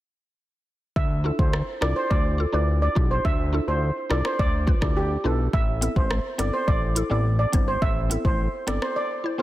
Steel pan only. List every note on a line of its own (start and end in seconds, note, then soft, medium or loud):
0.96 1.08 E5 medium
1.39 1.51 C5 medium
1.82 1.94 D5 medium
1.96 2.08 C5 medium
2.10 2.23 D5 medium
2.53 2.66 D5 medium
2.82 2.94 D5 medium
3.11 3.23 C5 medium
3.25 3.37 E5 loud
3.68 3.80 C5 medium
4.11 4.23 D5 medium
4.25 4.37 C5 medium
4.39 4.52 D5 loud
4.82 4.94 D5 medium
4.97 5.09 G4 medium
5.25 5.37 A4 medium
5.54 5.66 E5 medium
5.97 6.09 C5 medium
6.39 6.51 D5 medium
6.54 6.66 C5 medium
6.68 6.80 D5 medium
7.11 7.23 D5 medium
7.39 7.51 D5 medium
7.68 7.80 C5 medium
7.82 7.94 E5 loud
8.25 8.37 C5 medium
8.68 8.80 D5 medium
8.82 8.94 C5 medium
8.96 9.08 D5 medium
9.39 9.42 C5 medium